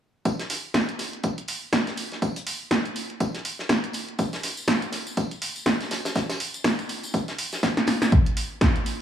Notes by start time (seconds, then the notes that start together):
0.25 kick, closed hi-hat, tambourine
0.39 snare, closed hi-hat
0.50 snare, open hi-hat, tambourine
0.74 kick, snare, closed hi-hat, tambourine
0.89 closed hi-hat
0.99 snare, open hi-hat, tambourine
1.13 closed hi-hat
1.23 kick, closed hi-hat, tambourine
1.38 closed hi-hat
1.48 open hi-hat, tambourine
1.73 kick, snare, closed hi-hat, tambourine
1.87 snare, closed hi-hat
1.97 open hi-hat, tambourine
2.12 snare, closed hi-hat
2.22 kick, closed hi-hat, tambourine
2.36 closed hi-hat
2.47 open hi-hat, tambourine
2.71 kick, snare, closed hi-hat, tambourine
2.85 closed hi-hat
2.96 open hi-hat, tambourine
3.10 closed hi-hat
3.20 kick, closed hi-hat, tambourine
3.34 snare, closed hi-hat
3.45 open hi-hat, tambourine
3.59 snare
3.69 kick, snare, closed hi-hat, tambourine
3.84 closed hi-hat
3.93 open hi-hat, tambourine
4.08 closed hi-hat
4.19 kick, closed hi-hat, tambourine
4.33 snare, closed hi-hat, tambourine
4.43 snare, open hi-hat, tambourine
4.57 tambourine
4.68 kick, snare, closed hi-hat, tambourine
4.82 closed hi-hat, tambourine
4.92 snare, open hi-hat, tambourine
5.07 closed hi-hat, tambourine
5.17 kick, closed hi-hat, tambourine
5.31 closed hi-hat, tambourine
5.42 open hi-hat, tambourine
5.56 tambourine
5.66 kick, snare, closed hi-hat, tambourine
5.80 snare, closed hi-hat, tambourine
5.91 snare, open hi-hat, tambourine
6.05 snare, closed hi-hat, tambourine
6.15 kick, snare, closed hi-hat, tambourine
6.29 snare, closed hi-hat, tambourine
6.40 open hi-hat, tambourine
6.54 closed hi-hat, tambourine
6.64 kick, snare, closed hi-hat, tambourine
6.79 closed hi-hat, tambourine
6.89 open hi-hat, tambourine
7.03 closed hi-hat, tambourine
7.14 kick, closed hi-hat, tambourine
7.28 snare, closed hi-hat, tambourine
7.38 open hi-hat, tambourine
7.53 snare, closed hi-hat, tambourine
7.63 kick, snare, closed hi-hat, tambourine
7.77 snare, closed hi-hat, tambourine
7.87 snare, open hi-hat, tambourine
8.02 snare, tambourine
8.12 kick, closed hi-hat
8.26 closed hi-hat
8.37 open hi-hat
8.61 kick, snare, closed hi-hat
8.76 closed hi-hat
8.86 open hi-hat